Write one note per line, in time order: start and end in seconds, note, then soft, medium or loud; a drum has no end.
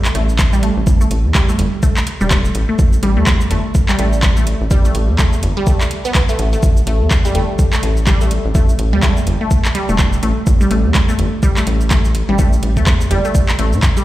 0.05 clap medium
0.05 shaker soft
0.15 0.70 A1 loud
0.15 0.19 A3 medium
0.15 closed hi-hat medium
0.29 shaker soft
0.39 kick loud
0.39 clap loud
0.39 closed hi-hat soft
0.39 shaker medium
0.53 0.56 G3 loud
0.53 shaker soft
0.63 0.65 A3 medium
0.63 closed hi-hat medium
0.77 0.84 A1 medium
0.87 1.05 A1 loud
0.87 kick loud
0.87 shaker medium
1.01 1.04 A3 medium
1.01 shaker soft
1.11 1.26 A1 loud
1.11 closed hi-hat loud
1.25 1.54 E2 medium
1.35 1.39 G3 loud
1.35 kick loud
1.35 clap medium
1.35 shaker medium
1.49 1.51 A3 medium
1.49 shaker soft
1.59 1.69 G1 loud
1.59 closed hi-hat loud
1.83 1.87 A3 medium
1.83 kick loud
1.83 shaker medium
1.97 clap medium
1.97 shaker soft
2.07 closed hi-hat loud
2.21 2.50 E1 medium
2.21 2.24 G3 loud
2.21 shaker soft
2.31 2.33 A3 medium
2.31 kick loud
2.31 clap loud
2.31 closed hi-hat soft
2.31 shaker medium
2.45 shaker soft
2.55 2.65 A1 loud
2.55 closed hi-hat loud
2.69 2.72 A3 medium
2.79 2.97 A1 loud
2.79 kick loud
2.79 shaker medium
2.93 shaker soft
3.03 3.18 A1 medium
3.03 3.07 G3 loud
3.03 closed hi-hat loud
3.17 3.46 E2 medium
3.17 3.19 A3 medium
3.27 kick loud
3.27 clap loud
3.27 shaker medium
3.41 shaker soft
3.51 3.61 G1 loud
3.51 3.55 A3 medium
3.51 closed hi-hat loud
3.75 kick loud
3.75 shaker medium
3.89 3.92 G3 loud
3.89 clap medium
3.89 shaker soft
3.99 4.54 A1 loud
3.99 4.01 A3 medium
3.99 closed hi-hat loud
4.13 shaker soft
4.23 kick loud
4.23 clap loud
4.23 closed hi-hat soft
4.23 shaker medium
4.37 4.40 A3 medium
4.37 shaker soft
4.47 closed hi-hat loud
4.61 4.68 A1 medium
4.71 4.89 A1 loud
4.71 4.75 G3 loud
4.71 kick loud
4.71 shaker medium
4.85 4.87 A3 medium
4.85 shaker soft
4.95 5.10 A1 loud
4.95 closed hi-hat loud
5.09 5.38 E2 medium
5.19 5.23 A3 medium
5.19 kick loud
5.19 clap medium
5.19 shaker medium
5.33 shaker soft
5.43 5.53 G1 loud
5.43 closed hi-hat loud
5.57 5.60 G3 loud
5.67 5.69 A3 medium
5.67 kick loud
5.67 shaker medium
5.81 clap medium
5.81 shaker soft
5.91 closed hi-hat loud
6.05 6.09 B3 loud
6.05 shaker soft
6.15 kick loud
6.15 clap medium
6.15 closed hi-hat soft
6.15 shaker medium
6.29 6.31 A3 loud
6.29 shaker soft
6.39 6.57 A1 loud
6.39 closed hi-hat loud
6.53 6.56 A3 medium
6.53 shaker soft
6.63 6.81 A1 loud
6.63 kick loud
6.63 shaker medium
6.77 shaker soft
6.87 7.02 A1 medium
6.87 6.91 A3 medium
6.87 closed hi-hat loud
7.01 7.30 E2 medium
7.11 kick loud
7.11 clap medium
7.11 shaker medium
7.25 7.28 G3 loud
7.25 shaker soft
7.35 7.45 G1 loud
7.35 7.37 A3 medium
7.35 closed hi-hat loud
7.59 kick loud
7.59 shaker medium
7.73 7.76 A3 medium
7.73 clap medium
7.73 shaker soft
7.83 8.38 A1 loud
7.83 closed hi-hat medium
7.97 shaker soft
8.07 8.11 G3 loud
8.07 kick loud
8.07 clap medium
8.07 closed hi-hat soft
8.07 shaker medium
8.21 8.23 A3 medium
8.21 shaker soft
8.31 closed hi-hat loud
8.45 8.52 A1 medium
8.55 8.73 A1 loud
8.55 8.59 A3 medium
8.55 kick loud
8.55 shaker medium
8.69 shaker soft
8.79 8.94 A1 medium
8.79 closed hi-hat medium
8.93 9.22 E2 medium
8.93 8.96 G3 loud
9.03 9.05 A3 medium
9.03 kick loud
9.03 clap medium
9.03 shaker medium
9.17 shaker soft
9.27 9.37 G1 loud
9.27 closed hi-hat medium
9.41 9.44 A3 medium
9.51 kick loud
9.51 shaker medium
9.65 clap medium
9.65 shaker soft
9.75 9.79 G3 loud
9.75 closed hi-hat medium
9.89 10.18 E1 medium
9.89 9.91 A3 medium
9.89 shaker soft
9.99 kick loud
9.99 clap medium
9.99 closed hi-hat soft
9.99 shaker medium
10.13 shaker soft
10.23 10.33 A1 loud
10.23 10.27 A3 medium
10.23 closed hi-hat medium
10.47 10.65 A1 loud
10.47 kick loud
10.47 shaker medium
10.61 10.64 G3 loud
10.61 shaker soft
10.71 10.86 A1 loud
10.71 10.73 A3 medium
10.71 closed hi-hat medium
10.85 11.14 E2 medium
10.95 kick loud
10.95 clap medium
10.95 shaker medium
11.09 11.12 A3 medium
11.09 shaker soft
11.19 11.29 G1 loud
11.19 closed hi-hat medium
11.43 11.47 G3 loud
11.43 kick loud
11.43 shaker medium
11.57 11.59 A3 medium
11.57 clap medium
11.57 shaker soft
11.67 12.22 A1 loud
11.67 closed hi-hat medium
11.81 shaker soft
11.91 11.95 A3 medium
11.91 kick loud
11.91 clap medium
11.91 closed hi-hat soft
11.91 shaker medium
12.05 shaker soft
12.15 closed hi-hat medium
12.29 12.36 A1 medium
12.29 12.32 G3 loud
12.39 12.57 A1 loud
12.39 12.41 A3 medium
12.39 kick loud
12.39 shaker medium
12.53 shaker soft
12.63 12.78 A1 medium
12.63 closed hi-hat medium
12.77 13.06 E2 medium
12.77 12.80 A3 medium
12.77 kick medium
12.77 shaker soft
12.87 kick loud
12.87 clap loud
12.87 shaker medium
13.01 shaker soft
13.11 13.21 G1 loud
13.11 13.15 G3 loud
13.11 closed hi-hat medium
13.25 13.27 A3 medium
13.25 shaker soft
13.35 kick loud
13.35 shaker medium
13.49 clap medium
13.49 shaker soft
13.59 13.74 A1 loud
13.59 13.63 A3 medium
13.59 closed hi-hat medium
13.73 13.80 A2 loud
13.73 shaker soft
13.83 kick loud
13.83 clap medium
13.83 closed hi-hat soft
13.83 shaker medium
13.97 14.00 G3 loud
13.97 shaker soft